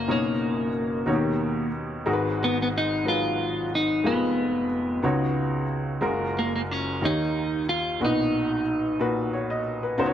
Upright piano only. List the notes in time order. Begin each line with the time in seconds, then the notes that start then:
Already playing: F#1 F#2 A#3 E4 F#4 C#5
0.08 F#1 F#2 B2 D#4 A#4 C#5
1.06 D#2 B2 D#3 D#4 F#4 C#5
1.13 G4
2.06 G#1 G#2 G#3 D#4 F#4 A#4
2.13 B4
3.04 F#3 G#3 D#4 B4
4.04 F1 F2 G#3 D#4 F4 A#4
4.12 B4
5.02 C#2 C#3 B3 D#4 F#4 C#5
6.01 F#1 F#2 G#3 F4 F#4 A#4
7.01 D#2 D#3 A#3 D#4 G4 C#5
8.00 B1 A#2 B2 D4 F#4 B4
8.07 D#4
8.99 A#2 D#4 F#4 B4
9.33 C#5
9.50 D#5
9.83 B4
9.98 C#2 C#3 B3 D#4 F#4 C5
10.06 C#5